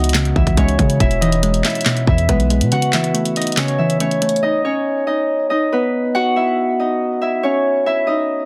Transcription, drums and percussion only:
0.04 closed hi-hat medium
0.09 closed hi-hat medium
0.14 snare loud
0.14 clap loud
0.14 closed hi-hat medium
0.25 closed hi-hat medium
0.36 kick loud
0.47 kick medium
0.47 closed hi-hat medium
0.57 kick medium
0.57 closed hi-hat medium
0.68 closed hi-hat soft
0.79 kick loud
0.79 closed hi-hat medium
0.90 closed hi-hat medium
1.00 kick loud
1.00 closed hi-hat medium
1.11 closed hi-hat medium
1.22 closed hi-hat medium
1.32 closed hi-hat medium
1.43 closed hi-hat loud
1.54 closed hi-hat medium
1.64 snare loud
1.64 clap medium
1.64 closed hi-hat soft
1.70 closed hi-hat medium
1.75 closed hi-hat medium
1.81 closed hi-hat medium
1.86 snare loud
1.86 clap loud
1.86 closed hi-hat medium
1.97 closed hi-hat medium
2.07 kick loud
2.18 closed hi-hat soft
2.29 kick medium
2.29 closed hi-hat medium
2.40 closed hi-hat soft
2.50 closed hi-hat medium
2.61 closed hi-hat medium
2.72 closed hi-hat medium
2.82 closed hi-hat medium
2.93 snare medium
2.93 clap medium
2.93 closed hi-hat medium
3.04 closed hi-hat medium
3.15 closed hi-hat medium
3.25 closed hi-hat medium
3.36 closed hi-hat medium
3.42 closed hi-hat medium
3.47 closed hi-hat medium
3.52 closed hi-hat medium
3.57 snare loud
3.57 clap medium
3.57 closed hi-hat medium
3.68 closed hi-hat medium
3.90 closed hi-hat soft
4.00 closed hi-hat medium
4.11 closed hi-hat soft
4.22 closed hi-hat medium
4.29 closed hi-hat medium
4.36 closed hi-hat soft

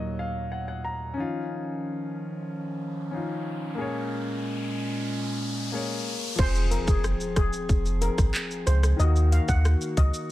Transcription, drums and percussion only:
6.39 kick loud
6.39 crash loud
6.39 shaker medium
6.55 shaker medium
6.72 closed hi-hat medium
6.72 shaker soft
6.88 kick medium
6.88 shaker medium
7.04 cross-stick loud
7.04 shaker medium
7.20 shaker medium
7.36 kick medium
7.36 cross-stick loud
7.36 closed hi-hat medium
7.36 shaker medium
7.53 shaker medium
7.69 kick loud
7.69 shaker medium
7.86 shaker medium
8.02 closed hi-hat medium
8.02 shaker medium
8.18 kick loud
8.18 cross-stick medium
8.18 shaker medium
8.34 clap medium
8.34 shaker medium
8.51 shaker medium
8.67 cross-stick medium
8.67 closed hi-hat loud
8.67 shaker medium
8.83 cross-stick loud
8.83 shaker medium
9.00 shaker medium
9.16 shaker medium
9.32 closed hi-hat medium
9.32 shaker medium
9.48 kick medium
9.48 shaker medium
9.65 cross-stick loud
9.65 shaker medium
9.81 shaker medium
9.97 kick loud
9.97 closed hi-hat medium
9.97 shaker medium
10.14 shaker medium

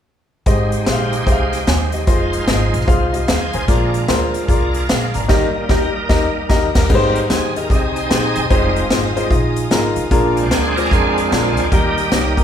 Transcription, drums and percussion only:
0.46 kick loud
0.46 closed hi-hat medium
0.72 closed hi-hat medium
0.86 snare loud
0.86 closed hi-hat medium
1.13 closed hi-hat medium
1.27 kick medium
1.27 closed hi-hat medium
1.53 snare soft
1.53 closed hi-hat medium
1.67 snare loud
1.67 closed hi-hat medium
1.92 closed hi-hat medium
2.07 kick loud
2.07 closed hi-hat medium
2.33 closed hi-hat medium
2.48 snare loud
2.48 closed hi-hat medium
2.74 closed hi-hat medium
2.81 snare soft
2.88 kick loud
2.88 closed hi-hat medium
3.14 closed hi-hat medium
3.28 snare loud
3.28 closed hi-hat medium
3.53 closed hi-hat medium
3.68 kick loud
3.68 closed hi-hat medium
3.94 closed hi-hat medium
4.08 snare loud
4.08 closed hi-hat medium
4.34 closed hi-hat medium
4.49 kick medium
4.49 closed hi-hat medium
4.74 closed hi-hat medium
4.89 snare loud
4.89 closed hi-hat medium
5.14 closed hi-hat medium
5.29 kick loud
5.29 snare loud
5.29 crash medium
5.69 kick medium
5.69 snare medium
6.09 kick medium
6.09 snare loud
6.50 kick medium
6.50 snare loud
6.75 kick loud
6.75 snare loud
6.75 crash medium
6.90 kick loud
6.90 crash medium
7.16 closed hi-hat medium
7.30 snare loud
7.30 closed hi-hat medium
7.56 closed hi-hat medium
7.70 kick loud
7.70 closed hi-hat medium
7.96 closed hi-hat medium
8.10 snare loud
8.10 closed hi-hat medium
8.35 closed hi-hat medium
8.50 kick loud
8.50 closed hi-hat medium
8.76 closed hi-hat medium
8.90 snare loud
8.90 closed hi-hat medium
9.17 closed hi-hat medium
9.31 kick medium
9.31 closed hi-hat medium
9.56 closed hi-hat medium
9.71 snare loud
9.71 closed hi-hat medium
9.96 closed hi-hat medium
10.11 kick loud
10.11 closed hi-hat medium
10.37 closed hi-hat medium
10.51 snare loud
10.51 closed hi-hat medium
10.77 closed hi-hat medium
10.85 snare soft
10.91 kick medium
10.91 closed hi-hat medium
11.18 closed hi-hat medium
11.32 snare loud
11.32 closed hi-hat medium
11.57 closed hi-hat medium
11.72 kick loud
11.72 closed hi-hat medium
11.98 closed hi-hat medium
12.12 snare loud
12.12 closed hi-hat medium
12.37 kick medium
12.37 closed hi-hat medium

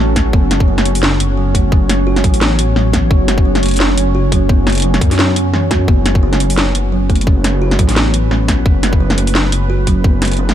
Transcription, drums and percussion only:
0.16 kick medium
0.16 snare medium
0.16 closed hi-hat medium
0.33 kick loud
0.51 snare medium
0.51 closed hi-hat medium
0.60 kick loud
0.78 snare medium
0.78 closed hi-hat soft
0.85 closed hi-hat medium
0.95 open hi-hat medium
1.03 snare loud
1.20 closed hi-hat medium
1.55 kick medium
1.55 closed hi-hat medium
1.72 kick loud
1.89 snare medium
1.89 closed hi-hat medium
2.16 snare medium
2.16 closed hi-hat soft
2.24 kick loud
2.24 closed hi-hat medium
2.34 open hi-hat medium
2.41 snare loud
2.59 closed hi-hat medium
2.76 snare medium
2.93 kick medium
2.93 snare medium
2.93 closed hi-hat medium
3.11 kick loud
3.28 snare medium
3.28 closed hi-hat medium
3.38 kick loud
3.55 snare medium
3.55 closed hi-hat soft
3.63 closed hi-hat medium
3.66 closed hi-hat medium
3.68 closed hi-hat soft
3.71 closed hi-hat soft
3.74 closed hi-hat soft
3.76 closed hi-hat soft
3.76 open hi-hat medium
3.78 snare loud
3.78 closed hi-hat soft
3.98 closed hi-hat medium
4.32 kick medium
4.32 closed hi-hat medium
4.49 kick loud
4.67 snare medium
4.67 closed hi-hat soft
4.70 closed hi-hat soft
4.72 closed hi-hat soft
4.75 closed hi-hat medium
4.78 closed hi-hat medium
4.80 closed hi-hat medium
4.82 closed hi-hat medium
4.94 snare medium
4.94 closed hi-hat soft
5.01 kick loud
5.01 closed hi-hat medium
5.11 snare soft
5.11 open hi-hat medium
5.19 snare loud
5.36 closed hi-hat medium
5.54 snare medium
5.71 kick medium
5.71 snare medium
5.71 closed hi-hat medium
5.88 kick loud
6.06 snare medium
6.06 closed hi-hat medium
6.15 kick loud
6.33 snare medium
6.33 closed hi-hat soft
6.40 closed hi-hat medium
6.50 open hi-hat medium
6.58 snare loud
6.75 closed hi-hat medium
7.10 kick medium
7.10 closed hi-hat soft
7.15 closed hi-hat soft
7.21 closed hi-hat soft
7.27 kick loud
7.44 snare medium
7.44 closed hi-hat medium
7.71 snare medium
7.71 closed hi-hat soft
7.79 kick loud
7.79 closed hi-hat medium
7.89 snare soft
7.89 open hi-hat medium
7.96 snare loud
8.14 closed hi-hat medium
8.31 snare medium
8.48 kick medium
8.48 snare medium
8.48 closed hi-hat medium
8.66 kick loud
8.83 snare medium
8.83 closed hi-hat medium
8.93 kick loud
9.10 snare medium
9.10 closed hi-hat soft
9.18 closed hi-hat medium
9.27 open hi-hat medium
9.35 snare loud
9.52 closed hi-hat medium
9.87 kick medium
9.87 closed hi-hat medium
10.04 kick loud
10.22 snare medium
10.22 closed hi-hat medium
10.25 closed hi-hat medium
10.28 closed hi-hat soft
10.31 closed hi-hat soft
10.33 closed hi-hat soft
10.37 closed hi-hat soft
10.49 snare medium
10.49 closed hi-hat soft

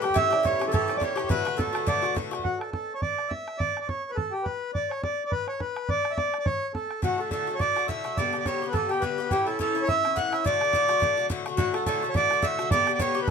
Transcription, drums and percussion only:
0.04 bodhran medium
0.10 bodhran soft
0.16 bodhran medium
0.33 bodhran medium
0.45 bodhran medium
0.53 bodhran soft
0.61 bodhran medium
0.74 bodhran medium
0.89 bodhran medium
1.01 bodhran medium
1.17 bodhran medium
1.24 bodhran soft
1.30 bodhran medium
1.47 bodhran medium
1.59 bodhran medium
1.67 bodhran soft
1.75 bodhran medium
1.87 bodhran medium
2.04 bodhran medium
2.17 bodhran medium
2.33 bodhran medium
2.39 bodhran soft
2.45 bodhran medium
2.61 bodhran medium
2.73 bodhran medium
3.02 bodhran medium
3.18 bodhran soft
3.31 bodhran medium
3.48 bodhran medium
3.60 bodhran medium
3.77 bodhran soft
3.89 bodhran medium
4.17 bodhran medium
4.46 bodhran medium
4.75 bodhran medium
4.91 bodhran soft
5.03 bodhran medium
5.32 bodhran medium
5.48 bodhran soft
5.60 bodhran medium
5.76 bodhran medium
5.89 bodhran medium
6.05 bodhran medium
6.18 bodhran medium
6.34 bodhran medium
6.46 bodhran medium
6.75 bodhran medium
6.91 bodhran soft
7.03 bodhran medium
7.31 bodhran medium
7.60 bodhran medium
7.76 bodhran soft
7.89 bodhran medium
8.05 bodhran medium
8.17 bodhran medium
8.34 bodhran soft
8.46 bodhran medium
8.74 bodhran medium
8.91 bodhran soft
9.03 bodhran medium
9.31 bodhran medium
9.48 bodhran soft
9.60 bodhran medium
9.89 bodhran medium
10.05 bodhran medium
10.17 bodhran medium
10.33 bodhran medium
10.46 bodhran medium
10.61 bodhran medium
10.73 bodhran medium
10.89 bodhran medium
11.02 bodhran medium
11.30 bodhran medium
11.46 bodhran medium
11.58 bodhran medium
11.74 bodhran medium
11.86 bodhran medium
12.15 bodhran medium
12.31 bodhran medium
12.43 bodhran medium
12.59 bodhran medium
12.71 bodhran medium
12.87 bodhran medium
12.99 bodhran medium

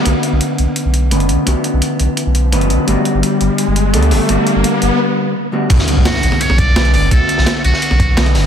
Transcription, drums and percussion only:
0.05 closed hi-hat medium
0.23 closed hi-hat medium
0.41 closed hi-hat medium
0.58 closed hi-hat medium
0.76 closed hi-hat medium
0.94 closed hi-hat medium
1.11 closed hi-hat medium
1.20 closed hi-hat soft
1.29 closed hi-hat medium
1.47 closed hi-hat medium
1.64 closed hi-hat medium
1.82 closed hi-hat medium
2.00 closed hi-hat medium
2.17 closed hi-hat medium
2.35 closed hi-hat medium
2.52 closed hi-hat medium
2.61 closed hi-hat soft
2.70 closed hi-hat medium
2.88 closed hi-hat medium
3.05 closed hi-hat medium
3.23 closed hi-hat medium
3.41 closed hi-hat medium
3.58 closed hi-hat medium
3.76 closed hi-hat medium
3.94 closed hi-hat medium
4.03 closed hi-hat soft
4.11 open hi-hat medium
4.29 closed hi-hat medium
4.47 closed hi-hat medium
4.64 closed hi-hat medium
4.82 closed hi-hat medium
5.70 kick loud
5.70 closed hi-hat loud
5.70 crash loud
5.70 ride medium
5.79 snare soft
5.88 closed hi-hat medium
5.88 ride medium
6.05 snare loud
6.05 closed hi-hat loud
6.05 open hi-hat medium
6.14 snare soft
6.23 closed hi-hat medium
6.23 ride medium
6.32 snare medium
6.41 closed hi-hat medium
6.41 ride medium
6.50 snare medium
6.58 kick loud
6.58 closed hi-hat medium
6.58 ride medium
6.76 snare loud
6.76 closed hi-hat medium
6.76 ride medium
6.85 closed hi-hat soft
6.94 open hi-hat medium
6.94 ride medium
7.11 kick loud
7.11 closed hi-hat medium
7.11 ride medium
7.29 closed hi-hat medium
7.29 ride medium
7.38 snare medium
7.46 snare loud
7.46 closed hi-hat loud
7.46 ride medium
7.64 closed hi-hat medium
7.64 ride medium
7.74 snare soft
7.82 closed hi-hat medium
7.82 ride medium
7.91 snare medium
8.00 kick loud
8.00 closed hi-hat medium
8.00 ride medium
8.17 snare loud
8.17 closed hi-hat medium
8.17 ride medium
8.26 snare soft
8.26 closed hi-hat soft
8.26 ride soft
8.35 snare medium
8.35 open hi-hat medium
8.35 ride medium

